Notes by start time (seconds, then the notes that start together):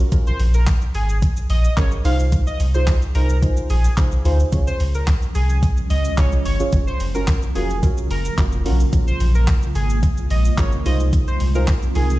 0.12 A#1 C#4 F4 G#4 A#4, kick, closed hi-hat, shaker
0.27 C5, shaker
0.40 A#1, open hi-hat, shaker
0.54 A#4, shaker
0.67 kick, clap, closed hi-hat, shaker
0.82 shaker
0.95 G#1 G#4, open hi-hat, shaker
1.09 shaker
1.22 kick, closed hi-hat, shaker
1.37 shaker
1.50 A#1 D#5, open hi-hat, shaker
1.64 shaker
1.77 G#1 C#4 F4 G#4 A#4 C#5, kick, clap, closed hi-hat, shaker
1.92 shaker
2.04 C2 D#4 F4 G#4 C5 F5, open hi-hat, shaker
2.20 shaker
2.32 kick, closed hi-hat, shaker
2.47 D#5, shaker
2.60 C2, open hi-hat, shaker
2.74 D#4 F4 G#4 C5, shaker
2.87 kick, clap, closed hi-hat, shaker
3.02 shaker
3.15 C2 D#4 F4 G#4 A#4 C5, open hi-hat, shaker
3.29 shaker
3.42 D#4 F4 G#4 C5, kick, closed hi-hat, shaker
3.57 shaker
3.70 A#1 G#4, open hi-hat, shaker
3.85 shaker
3.97 C2 D#4 F4 G#4 C5, kick, clap, closed hi-hat, shaker
4.12 shaker
4.25 D2 D#4 F4 G#4 C5, open hi-hat, shaker
4.40 shaker
4.52 C#2 F3 G#3 C#4 F4 G#4 C#5, kick, closed hi-hat, shaker
4.67 C5, shaker
4.80 C#2, open hi-hat, shaker
4.95 A#4, shaker
5.08 kick, clap, closed hi-hat, shaker
5.22 shaker
5.35 C2 G#4, open hi-hat, shaker
5.50 shaker
5.63 kick, closed hi-hat, shaker
5.77 shaker
5.90 C#2 D#5, open hi-hat, shaker
6.05 shaker
6.17 C2 C#4 F4 G#4 C#5, kick, clap, closed hi-hat, shaker
6.32 shaker
6.45 G1 C#5, open hi-hat, shaker
6.60 C#4 F4 G#4 C#5, shaker
6.73 F#1 C#3 F#3 A#3, kick, closed hi-hat, shaker
6.87 C5, shaker
7.00 F#1, open hi-hat, shaker
7.15 C#4 F4 F#4 A#4, shaker
7.28 kick, clap, closed hi-hat, shaker
7.43 shaker
7.55 F1 C#4 F4 F#4 G#4 A#4, open hi-hat, shaker
7.70 shaker
7.83 C#4 F4 F#4 A#4, kick, closed hi-hat, shaker
7.98 shaker
8.10 F#1 A#4, open hi-hat, shaker
8.25 shaker
8.38 F1 C#4 F4 F#4 A#4, kick, clap, closed hi-hat, shaker
8.52 shaker
8.65 B1 C#4 F4 F#4 A#4, open hi-hat, shaker
8.80 shaker
8.92 A#1 G#3 C#4 F4 G#4 A#4, kick, closed hi-hat, shaker
9.08 C5, shaker
9.20 A#1, open hi-hat, shaker
9.35 A#4, shaker
9.48 kick, clap, closed hi-hat, shaker
9.63 shaker
9.75 G#1 G#4, open hi-hat, shaker
9.90 shaker
10.03 kick, closed hi-hat, shaker
10.17 shaker
10.30 A#1 D#5, open hi-hat, shaker
10.45 shaker
10.58 G#1 C#4 F4 G#4 A#4 C#5, kick, clap, closed hi-hat, shaker
10.72 shaker
10.85 C2 D#3 G#3 C4 D#4 F4 G#4 C5 D#5, open hi-hat, shaker
11.00 shaker
11.13 kick, closed hi-hat, shaker
11.28 C5, shaker
11.40 C2, open hi-hat, shaker
11.55 D#4 F4 G#4 A#4 C5, shaker
11.68 kick, clap, closed hi-hat, shaker
11.82 shaker
11.95 C2 D#4 F4 G#4 A#4, open hi-hat, shaker
12.10 shaker